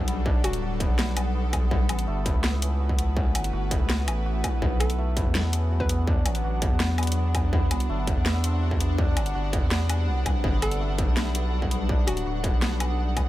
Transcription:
Already playing: B1 G3 A3 C#4 D4 F#4 A4 B4
0.08 B3, closed hi-hat
0.26 D4, kick
0.44 D1 F#3 F#4, closed hi-hat, low woodblock
0.53 closed hi-hat
0.62 D1 F#4
0.80 B3, kick, closed hi-hat
0.90 B1
0.98 B3, snare
1.17 B3, closed hi-hat, low woodblock
1.35 B3
1.53 B3, kick, closed hi-hat, low woodblock
1.71 A3 B3 E4 B4, kick
1.89 A1 B3, closed hi-hat, low woodblock
1.99 closed hi-hat
2.07 G1 A3
2.26 B4, kick, closed hi-hat
2.35 C#2
2.44 B3, snare
2.62 C#4, closed hi-hat
2.80 F#4
2.89 kick
2.98 B3, closed hi-hat
3.17 C#4, kick
3.35 G1 F#3, closed hi-hat, low woodblock
3.44 closed hi-hat
3.53 G1 F#4
3.71 B3, kick, closed hi-hat
3.80 C#2
3.89 B3, snare
4.08 A1 F#4, closed hi-hat, low woodblock
4.26 F#4
4.44 F#4, kick, closed hi-hat, low woodblock
4.62 B1 F#3 B3 D4 F#5, kick
4.80 B3 A4, closed hi-hat, low woodblock
4.90 closed hi-hat
4.98 A3
5.17 B4, kick, closed hi-hat
5.26 E2
5.35 B3, snare
5.53 C#4, closed hi-hat
5.71 F#4
5.80 B4, kick
5.89 B3, closed hi-hat
6.07 D4, kick
6.26 A1 F#3, closed hi-hat, low woodblock
6.35 closed hi-hat
6.44 A1 F#4
6.62 B3, kick, closed hi-hat
6.71 E2
6.80 B3, snare
6.98 B3, closed hi-hat, low woodblock
7.03 closed hi-hat
7.07 closed hi-hat
7.12 closed hi-hat
7.17 B3
7.35 B3, kick, closed hi-hat, low woodblock
7.53 C3 G3 B3, kick
7.71 C2 B3, closed hi-hat, low woodblock
7.80 closed hi-hat
7.89 G1 A3
8.07 B4, kick, closed hi-hat
8.17 E2
8.26 B3, snare
8.44 C4, closed hi-hat
8.62 F#4
8.71 kick
8.80 B3, closed hi-hat
8.98 D4, kick
9.17 G1 F#3, closed hi-hat, low woodblock
9.26 closed hi-hat
9.35 G1 F#4
9.53 B3, kick, closed hi-hat
9.62 E2
9.71 B3, snare
9.89 F#4, closed hi-hat, low woodblock
10.08 C2 B3
10.26 C2 B3, kick, closed hi-hat, low woodblock
10.44 G1 B3 A4, kick
10.62 B3 A4, closed hi-hat, low woodblock
10.71 closed hi-hat
10.80 A3
10.98 B4, kick, closed hi-hat
11.08 B1
11.17 B3, snare
11.35 F#4, closed hi-hat
11.53 F#4
11.62 kick
11.71 B3, closed hi-hat
11.89 D4, kick
12.07 D1 F#3 F#4, closed hi-hat, low woodblock
12.17 closed hi-hat
12.26 D1 F#4
12.44 B3, kick, closed hi-hat
12.53 B1
12.62 B3, snare
12.80 B3, closed hi-hat, low woodblock
12.98 B3
13.16 B3, kick, closed hi-hat, low woodblock

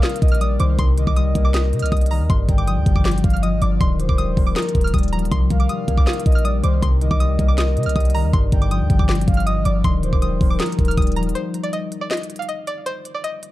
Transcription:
Already playing: D#3 G3 A#3 D#4 F5
0.03 C4 D#6, snare, clap, closed hi-hat
0.09 closed hi-hat
0.16 closed hi-hat
0.22 A#1 D#5, kick, closed hi-hat
0.28 F6, closed hi-hat
0.35 closed hi-hat
0.41 G3 D5 D#6, closed hi-hat
0.60 C2 D#3 C5 D6, closed hi-hat
0.79 C2 C3 C6, kick, closed hi-hat
0.97 D#3 D#5, closed hi-hat
1.07 C2 D6, kick
1.16 G3 D#6, closed hi-hat
1.35 C2 A#3, kick, closed hi-hat
1.45 D6
1.54 C4 D#6, snare, clap, closed hi-hat
1.73 C3 D#5, closed hi-hat
1.79 C2 F6, closed hi-hat
1.86 closed hi-hat
1.92 C2 G3 D#6, kick, closed hi-hat
1.97 closed hi-hat
2.01 closed hi-hat
2.06 closed hi-hat
2.11 D#3 A#5, open hi-hat
2.20 D#2
2.30 G1 G2 C6, kick, closed hi-hat
2.48 G1 D3 G5, kick, closed hi-hat
2.58 D6, closed hi-hat
2.67 F3 D#6, closed hi-hat
2.77 D2
2.86 G1 G3, kick, closed hi-hat
2.96 D6, kick
3.05 C4 D6, snare, clap, closed hi-hat
3.11 closed hi-hat
3.18 closed hi-hat
3.24 G1 F5, kick, closed hi-hat
3.30 F6, closed hi-hat
3.37 closed hi-hat
3.43 F3 D#5 D#6, closed hi-hat
3.52 G#1
3.62 G1 D3 D5 D6, closed hi-hat
3.80 D#1 D#3 C6, kick, closed hi-hat
3.99 F3 C5, closed hi-hat
4.09 D#1 D6, kick
4.18 G3 D#6, closed hi-hat
4.37 D#1 A#3, kick, open hi-hat
4.47 D6
4.56 D#4 A#4 D#6, snare, clap, closed hi-hat
4.62 closed hi-hat
4.69 closed hi-hat
4.75 D#1, kick, closed hi-hat
4.81 F6, closed hi-hat
4.87 closed hi-hat
4.94 D#1 G3 D#6, kick, closed hi-hat
4.98 closed hi-hat
5.03 closed hi-hat
5.08 closed hi-hat
5.13 F3 A#5, closed hi-hat
5.19 closed hi-hat
5.25 closed hi-hat
5.31 C2 C3 C6, kick, closed hi-hat
5.50 C2 D#3 F5, kick, closed hi-hat
5.60 D6, closed hi-hat
5.69 G3 D#6, closed hi-hat
5.88 C2 A#3, kick, closed hi-hat
5.97 D6, kick
6.07 C4 D#6, snare, clap, closed hi-hat
6.13 closed hi-hat
6.20 closed hi-hat
6.26 A#1 D#5, kick, closed hi-hat
6.32 F6, closed hi-hat
6.39 closed hi-hat
6.44 G3 D5 D#6, closed hi-hat
6.63 C2 D#3 C5 D6, closed hi-hat
6.82 C2 C3 C6, kick, closed hi-hat
7.01 D#3 D#5, closed hi-hat
7.11 C2 D6, kick
7.20 G3 D#6, closed hi-hat
7.39 C2 A#3, kick, closed hi-hat
7.48 D6
7.58 C4 D#6, snare, clap, closed hi-hat
7.77 C3 D#5, closed hi-hat
7.83 C2 F6, closed hi-hat
7.89 closed hi-hat
7.96 C2 G3 D#6, kick, closed hi-hat
8.00 closed hi-hat
8.05 closed hi-hat
8.10 closed hi-hat
8.14 D#3 A#5, open hi-hat
8.24 D#2
8.33 G1 G2 C6, kick, closed hi-hat
8.52 G1 D3 G5, kick, closed hi-hat
8.62 D6, closed hi-hat
8.71 F3 D#6, closed hi-hat
8.81 D2
8.90 G1 G3, kick, closed hi-hat
8.99 D6, kick
9.09 C4 D6, snare, clap, closed hi-hat
9.15 closed hi-hat
9.21 closed hi-hat
9.28 G1 F5, kick, closed hi-hat
9.34 F6, closed hi-hat
9.40 closed hi-hat
9.46 F3 D#5 D#6, closed hi-hat
9.56 G#1
9.65 G1 D3 D5 D6, closed hi-hat
9.84 D#1 D#3 C6, kick, closed hi-hat
10.03 F3 C5, closed hi-hat
10.13 D#1 D6, kick
10.22 G3 D#6, closed hi-hat
10.41 D#1 A#3, kick, open hi-hat
10.50 D6
10.60 D#4 A#4 D#6, snare, clap, closed hi-hat
10.66 closed hi-hat
10.72 closed hi-hat
10.79 D#1, kick, closed hi-hat
10.85 F6, closed hi-hat
10.91 closed hi-hat
10.97 D#1 G3 D#6, kick, closed hi-hat
11.02 closed hi-hat
11.07 closed hi-hat
11.12 closed hi-hat
11.16 F3 A#5, closed hi-hat
11.23 closed hi-hat
11.29 closed hi-hat
11.35 C5, closed hi-hat
11.54 closed hi-hat
11.63 D5, closed hi-hat
11.73 D#5, closed hi-hat
11.92 closed hi-hat
12.01 D5
12.11 D#5, snare, clap, closed hi-hat
12.17 closed hi-hat
12.23 closed hi-hat
12.30 closed hi-hat
12.36 F5, closed hi-hat
12.42 closed hi-hat
12.48 D#5, closed hi-hat
12.67 D5, closed hi-hat
12.86 C5, closed hi-hat
13.05 closed hi-hat
13.14 D5
13.24 D#5, closed hi-hat
13.43 closed hi-hat

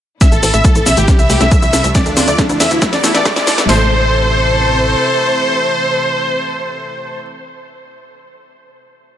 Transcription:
0.21 C3 E3 A3 B3 E4 E5, kick, snare, closed hi-hat, riser, shaker
0.32 A1 A4, closed hi-hat, shaker
0.43 A1 C4 A4, open hi-hat, shaker
0.54 A1 A3 E5, closed hi-hat, shaker
0.64 A3 A4, kick, closed hi-hat, shaker
0.75 A1 E4 A4, closed hi-hat, shaker
0.86 B1 A4 E5, snare, open hi-hat, shaker
0.97 A1 A3 G4, closed hi-hat, shaker
1.08 G3 A3 G4, kick, snare, closed hi-hat, shaker
1.19 C2 A4 E5, closed hi-hat, shaker
1.30 C2 A3 G4, open hi-hat, shaker
1.41 C2 A3 E5, snare, closed hi-hat, shaker
1.51 A3, kick, closed hi-hat, shaker
1.62 C2 E4, closed hi-hat, shaker
1.73 C2 A4, snare, open hi-hat, shaker
1.84 C2 A3, closed hi-hat, shaker
1.95 F3 A3 D4 F4 D5, kick, snare, closed hi-hat, shaker
2.06 D2 D4 A4, closed hi-hat, shaker
2.17 D2 C4 D4, snare, open hi-hat, shaker
2.28 D2 A3 D5, closed hi-hat, shaker
2.38 A3 D4, kick, snare, closed hi-hat, shaker
2.49 D2 D4 E4, closed hi-hat, shaker
2.60 E2 A4 E5, snare, open hi-hat, shaker
2.71 D2 A3 E4, closed hi-hat, shaker
2.82 B2 E3 A3 E4 A4, kick, snare, closed hi-hat, shaker
2.93 E2 A4 D5, snare, closed hi-hat, shaker
3.03 E2 A3 E4, snare, open hi-hat, shaker
3.14 E2 A3 D5, snare, closed hi-hat, shaker
3.25 A3, kick, snare, closed hi-hat, shaker
3.36 E2 E4, snare, closed hi-hat, shaker
3.47 E2 A4, snare, open hi-hat, shaker
3.58 E2 A3, snare, closed hi-hat, shaker
3.69 A1 C3 E3 A3 C4 A4 C5, snare, open hi-hat

